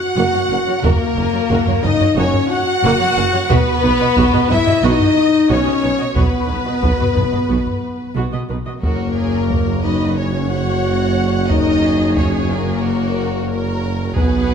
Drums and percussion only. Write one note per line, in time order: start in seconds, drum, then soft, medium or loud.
0.84 taiko medium
1.51 taiko medium
1.67 taiko low medium
1.84 taiko low medium
2.01 taiko low medium
2.34 taiko low medium
3.50 taiko loud
4.17 taiko medium
4.33 taiko low medium
4.50 taiko low medium
4.67 taiko low medium
5.00 taiko low medium
6.17 taiko loud
6.83 taiko medium
7.00 taiko low soft
7.17 taiko low medium
7.33 taiko low medium
7.67 taiko low soft
8.84 taiko medium
9.50 taiko medium
11.50 taiko medium
12.17 taiko medium
14.16 taiko medium